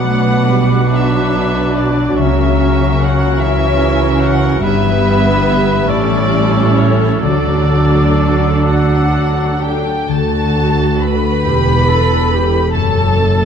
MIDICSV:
0, 0, Header, 1, 10, 480
1, 0, Start_track
1, 0, Tempo, 855920
1, 1230, Time_signature, 6, 3, 24, 8
1, 1230, Tempo, 811908
1, 2190, Tempo, 835655
1, 3630, Tempo, 936037
1, 6030, Tempo, 872093
1, 7376, End_track
2, 0, Start_track
2, 0, Title_t, "Flute"
2, 0, Program_c, 0, 73
2, 0, Note_on_c, 0, 86, 44
2, 1214, Note_on_c, 0, 85, 44
2, 1223, Note_off_c, 0, 86, 0
2, 2651, Note_off_c, 0, 85, 0
2, 2655, Note_on_c, 0, 83, 48
2, 3367, Note_on_c, 0, 85, 53
2, 3375, Note_off_c, 0, 83, 0
2, 3938, Note_off_c, 0, 85, 0
2, 4080, Note_on_c, 0, 86, 46
2, 5346, Note_off_c, 0, 86, 0
2, 7376, End_track
3, 0, Start_track
3, 0, Title_t, "Violin section"
3, 0, Program_c, 1, 48
3, 0, Note_on_c, 1, 78, 71
3, 519, Note_off_c, 1, 78, 0
3, 522, Note_on_c, 1, 76, 63
3, 995, Note_off_c, 1, 76, 0
3, 1000, Note_on_c, 1, 74, 53
3, 1231, Note_on_c, 1, 76, 64
3, 1235, Note_off_c, 1, 74, 0
3, 1707, Note_off_c, 1, 76, 0
3, 1719, Note_on_c, 1, 78, 67
3, 1952, Note_off_c, 1, 78, 0
3, 1953, Note_on_c, 1, 76, 71
3, 2428, Note_off_c, 1, 76, 0
3, 2429, Note_on_c, 1, 78, 70
3, 2665, Note_off_c, 1, 78, 0
3, 2665, Note_on_c, 1, 76, 76
3, 3366, Note_off_c, 1, 76, 0
3, 3374, Note_on_c, 1, 74, 71
3, 3856, Note_on_c, 1, 73, 58
3, 3859, Note_off_c, 1, 74, 0
3, 4100, Note_off_c, 1, 73, 0
3, 4107, Note_on_c, 1, 74, 62
3, 4819, Note_off_c, 1, 74, 0
3, 4838, Note_on_c, 1, 78, 61
3, 5300, Note_off_c, 1, 78, 0
3, 5317, Note_on_c, 1, 79, 57
3, 5559, Note_off_c, 1, 79, 0
3, 5560, Note_on_c, 1, 81, 68
3, 6024, Note_on_c, 1, 83, 80
3, 6028, Note_off_c, 1, 81, 0
3, 6983, Note_on_c, 1, 81, 69
3, 6987, Note_off_c, 1, 83, 0
3, 7376, Note_off_c, 1, 81, 0
3, 7376, End_track
4, 0, Start_track
4, 0, Title_t, "Oboe"
4, 0, Program_c, 2, 68
4, 0, Note_on_c, 2, 71, 44
4, 1211, Note_off_c, 2, 71, 0
4, 1243, Note_on_c, 2, 70, 47
4, 2648, Note_off_c, 2, 70, 0
4, 2661, Note_on_c, 2, 71, 54
4, 3378, Note_on_c, 2, 69, 52
4, 3387, Note_off_c, 2, 71, 0
4, 5378, Note_off_c, 2, 69, 0
4, 7376, End_track
5, 0, Start_track
5, 0, Title_t, "Clarinet"
5, 0, Program_c, 3, 71
5, 0, Note_on_c, 3, 66, 39
5, 2659, Note_on_c, 3, 67, 47
5, 2668, Note_off_c, 3, 66, 0
5, 3942, Note_off_c, 3, 67, 0
5, 4099, Note_on_c, 3, 66, 42
5, 5356, Note_off_c, 3, 66, 0
5, 7376, End_track
6, 0, Start_track
6, 0, Title_t, "Violin section"
6, 0, Program_c, 4, 48
6, 0, Note_on_c, 4, 62, 37
6, 0, Note_on_c, 4, 66, 38
6, 491, Note_off_c, 4, 62, 0
6, 516, Note_on_c, 4, 59, 40
6, 1212, Note_off_c, 4, 66, 0
6, 1233, Note_off_c, 4, 59, 0
6, 1233, Note_on_c, 4, 58, 38
6, 1233, Note_on_c, 4, 66, 37
6, 1937, Note_off_c, 4, 66, 0
6, 1938, Note_off_c, 4, 58, 0
6, 1956, Note_on_c, 4, 64, 44
6, 1958, Note_on_c, 4, 61, 40
6, 2663, Note_off_c, 4, 64, 0
6, 2667, Note_off_c, 4, 61, 0
6, 2668, Note_on_c, 4, 71, 45
6, 2670, Note_on_c, 4, 64, 44
6, 3359, Note_off_c, 4, 71, 0
6, 3360, Note_off_c, 4, 64, 0
6, 3384, Note_on_c, 4, 69, 51
6, 3387, Note_on_c, 4, 64, 53
6, 4092, Note_off_c, 4, 64, 0
6, 4103, Note_off_c, 4, 69, 0
6, 4107, Note_on_c, 4, 66, 41
6, 4109, Note_on_c, 4, 69, 42
6, 4819, Note_off_c, 4, 66, 0
6, 4820, Note_off_c, 4, 69, 0
6, 4834, Note_on_c, 4, 66, 43
6, 5297, Note_off_c, 4, 66, 0
6, 5306, Note_on_c, 4, 67, 42
6, 5554, Note_off_c, 4, 67, 0
6, 5559, Note_on_c, 4, 69, 51
6, 6019, Note_off_c, 4, 69, 0
6, 6029, Note_on_c, 4, 71, 62
6, 6973, Note_on_c, 4, 69, 54
6, 6989, Note_off_c, 4, 71, 0
6, 7376, Note_off_c, 4, 69, 0
6, 7376, End_track
7, 0, Start_track
7, 0, Title_t, "Harp"
7, 0, Program_c, 5, 46
7, 0, Note_on_c, 5, 47, 42
7, 0, Note_on_c, 5, 59, 30
7, 0, Note_on_c, 5, 66, 29
7, 21, Note_on_c, 5, 54, 31
7, 143, Note_on_c, 5, 62, 33
7, 262, Note_on_c, 5, 71, 35
7, 369, Note_off_c, 5, 66, 0
7, 376, Note_on_c, 5, 66, 34
7, 498, Note_on_c, 5, 74, 39
7, 615, Note_off_c, 5, 66, 0
7, 622, Note_on_c, 5, 66, 34
7, 734, Note_off_c, 5, 74, 0
7, 741, Note_on_c, 5, 74, 35
7, 855, Note_off_c, 5, 66, 0
7, 861, Note_on_c, 5, 66, 34
7, 972, Note_off_c, 5, 62, 0
7, 979, Note_on_c, 5, 62, 35
7, 1096, Note_off_c, 5, 54, 0
7, 1102, Note_on_c, 5, 54, 33
7, 1221, Note_on_c, 5, 49, 44
7, 1245, Note_off_c, 5, 62, 0
7, 1245, Note_off_c, 5, 71, 0
7, 1246, Note_off_c, 5, 74, 0
7, 1247, Note_off_c, 5, 47, 0
7, 1248, Note_off_c, 5, 59, 0
7, 1338, Note_off_c, 5, 54, 0
7, 1346, Note_on_c, 5, 54, 33
7, 1466, Note_on_c, 5, 61, 32
7, 1587, Note_on_c, 5, 70, 32
7, 1698, Note_off_c, 5, 66, 0
7, 1705, Note_on_c, 5, 66, 36
7, 1824, Note_on_c, 5, 73, 35
7, 1942, Note_on_c, 5, 82, 46
7, 2054, Note_off_c, 5, 73, 0
7, 2061, Note_on_c, 5, 73, 39
7, 2174, Note_off_c, 5, 82, 0
7, 2181, Note_on_c, 5, 82, 41
7, 2301, Note_off_c, 5, 73, 0
7, 2308, Note_on_c, 5, 73, 40
7, 2412, Note_off_c, 5, 70, 0
7, 2419, Note_on_c, 5, 70, 38
7, 2533, Note_off_c, 5, 61, 0
7, 2540, Note_on_c, 5, 61, 41
7, 2656, Note_on_c, 5, 43, 55
7, 2678, Note_off_c, 5, 49, 0
7, 2678, Note_off_c, 5, 54, 0
7, 2678, Note_off_c, 5, 66, 0
7, 2679, Note_off_c, 5, 70, 0
7, 2679, Note_off_c, 5, 82, 0
7, 2681, Note_off_c, 5, 61, 0
7, 2683, Note_off_c, 5, 73, 0
7, 2781, Note_on_c, 5, 52, 37
7, 2902, Note_on_c, 5, 55, 38
7, 3139, Note_on_c, 5, 71, 45
7, 3257, Note_on_c, 5, 67, 44
7, 3376, Note_on_c, 5, 45, 54
7, 3396, Note_off_c, 5, 43, 0
7, 3398, Note_off_c, 5, 52, 0
7, 3399, Note_off_c, 5, 71, 0
7, 3497, Note_on_c, 5, 52, 40
7, 3617, Note_off_c, 5, 55, 0
7, 3624, Note_on_c, 5, 55, 40
7, 3745, Note_on_c, 5, 61, 39
7, 3856, Note_on_c, 5, 69, 41
7, 3962, Note_off_c, 5, 67, 0
7, 3968, Note_on_c, 5, 67, 39
7, 4094, Note_on_c, 5, 50, 47
7, 4116, Note_off_c, 5, 67, 0
7, 4120, Note_off_c, 5, 52, 0
7, 4120, Note_off_c, 5, 55, 0
7, 4121, Note_off_c, 5, 45, 0
7, 4123, Note_off_c, 5, 61, 0
7, 4221, Note_on_c, 5, 54, 30
7, 4340, Note_on_c, 5, 62, 31
7, 4462, Note_off_c, 5, 69, 0
7, 4468, Note_on_c, 5, 69, 31
7, 4590, Note_on_c, 5, 66, 34
7, 4708, Note_on_c, 5, 74, 31
7, 4825, Note_on_c, 5, 81, 38
7, 4942, Note_off_c, 5, 74, 0
7, 4948, Note_on_c, 5, 74, 32
7, 5062, Note_off_c, 5, 81, 0
7, 5068, Note_on_c, 5, 81, 35
7, 5185, Note_off_c, 5, 74, 0
7, 5192, Note_on_c, 5, 74, 33
7, 5308, Note_off_c, 5, 69, 0
7, 5314, Note_on_c, 5, 69, 30
7, 5431, Note_off_c, 5, 62, 0
7, 5437, Note_on_c, 5, 62, 29
7, 5551, Note_off_c, 5, 50, 0
7, 5557, Note_on_c, 5, 50, 49
7, 5785, Note_off_c, 5, 62, 0
7, 5791, Note_on_c, 5, 62, 33
7, 6021, Note_off_c, 5, 62, 0
7, 6024, Note_off_c, 5, 69, 0
7, 6027, Note_on_c, 5, 62, 32
7, 6030, Note_on_c, 5, 69, 32
7, 6234, Note_off_c, 5, 54, 0
7, 6269, Note_on_c, 5, 40, 48
7, 6292, Note_off_c, 5, 50, 0
7, 6292, Note_off_c, 5, 74, 0
7, 6293, Note_off_c, 5, 62, 0
7, 6293, Note_off_c, 5, 66, 0
7, 6511, Note_on_c, 5, 55, 38
7, 6751, Note_off_c, 5, 69, 0
7, 6755, Note_on_c, 5, 61, 32
7, 6759, Note_on_c, 5, 69, 35
7, 6986, Note_on_c, 5, 42, 51
7, 7005, Note_off_c, 5, 55, 0
7, 7006, Note_off_c, 5, 40, 0
7, 7010, Note_off_c, 5, 61, 0
7, 7144, Note_off_c, 5, 81, 0
7, 7228, Note_on_c, 5, 54, 33
7, 7376, Note_off_c, 5, 42, 0
7, 7376, Note_off_c, 5, 54, 0
7, 7376, Note_off_c, 5, 69, 0
7, 7376, End_track
8, 0, Start_track
8, 0, Title_t, "Viola section"
8, 0, Program_c, 6, 48
8, 0, Note_on_c, 6, 59, 36
8, 36, Note_on_c, 6, 57, 42
8, 274, Note_off_c, 6, 57, 0
8, 278, Note_on_c, 6, 55, 43
8, 492, Note_off_c, 6, 59, 0
8, 511, Note_on_c, 6, 62, 43
8, 512, Note_on_c, 6, 54, 46
8, 514, Note_off_c, 6, 55, 0
8, 1230, Note_off_c, 6, 62, 0
8, 1239, Note_on_c, 6, 61, 41
8, 1928, Note_off_c, 6, 54, 0
8, 1955, Note_off_c, 6, 61, 0
8, 1961, Note_on_c, 6, 52, 43
8, 1961, Note_on_c, 6, 61, 46
8, 2655, Note_off_c, 6, 61, 0
8, 2665, Note_on_c, 6, 55, 52
8, 2666, Note_on_c, 6, 59, 47
8, 2669, Note_off_c, 6, 52, 0
8, 3358, Note_off_c, 6, 55, 0
8, 3358, Note_off_c, 6, 59, 0
8, 3385, Note_on_c, 6, 55, 59
8, 3386, Note_on_c, 6, 61, 52
8, 4091, Note_off_c, 6, 55, 0
8, 4106, Note_off_c, 6, 61, 0
8, 4108, Note_on_c, 6, 62, 48
8, 4109, Note_on_c, 6, 54, 46
8, 5429, Note_off_c, 6, 62, 0
8, 5430, Note_off_c, 6, 54, 0
8, 5560, Note_on_c, 6, 66, 45
8, 6252, Note_off_c, 6, 66, 0
8, 6269, Note_on_c, 6, 67, 44
8, 6508, Note_off_c, 6, 67, 0
8, 6517, Note_on_c, 6, 69, 46
8, 6754, Note_off_c, 6, 69, 0
8, 6757, Note_on_c, 6, 67, 44
8, 6991, Note_off_c, 6, 67, 0
8, 6993, Note_on_c, 6, 69, 54
8, 7376, Note_off_c, 6, 69, 0
8, 7376, End_track
9, 0, Start_track
9, 0, Title_t, "Cello section"
9, 0, Program_c, 7, 48
9, 0, Note_on_c, 7, 47, 43
9, 1205, Note_off_c, 7, 47, 0
9, 1228, Note_on_c, 7, 49, 48
9, 2640, Note_off_c, 7, 49, 0
9, 2664, Note_on_c, 7, 43, 53
9, 3358, Note_off_c, 7, 43, 0
9, 3383, Note_on_c, 7, 45, 60
9, 4103, Note_on_c, 7, 50, 49
9, 4104, Note_off_c, 7, 45, 0
9, 5447, Note_off_c, 7, 50, 0
9, 5557, Note_on_c, 7, 38, 51
9, 6150, Note_off_c, 7, 38, 0
9, 6271, Note_on_c, 7, 40, 50
9, 6869, Note_off_c, 7, 40, 0
9, 6979, Note_on_c, 7, 42, 51
9, 7376, Note_off_c, 7, 42, 0
9, 7376, End_track
10, 0, Start_track
10, 0, Title_t, "Double bass section"
10, 0, Program_c, 8, 48
10, 0, Note_on_c, 8, 35, 52
10, 1204, Note_off_c, 8, 35, 0
10, 1232, Note_on_c, 8, 37, 48
10, 2642, Note_off_c, 8, 37, 0
10, 2660, Note_on_c, 8, 31, 60
10, 3355, Note_off_c, 8, 31, 0
10, 3372, Note_on_c, 8, 33, 52
10, 4099, Note_off_c, 8, 33, 0
10, 4101, Note_on_c, 8, 38, 56
10, 5446, Note_off_c, 8, 38, 0
10, 5552, Note_on_c, 8, 38, 60
10, 6147, Note_off_c, 8, 38, 0
10, 6268, Note_on_c, 8, 28, 51
10, 6867, Note_off_c, 8, 28, 0
10, 6981, Note_on_c, 8, 30, 63
10, 7376, Note_off_c, 8, 30, 0
10, 7376, End_track
0, 0, End_of_file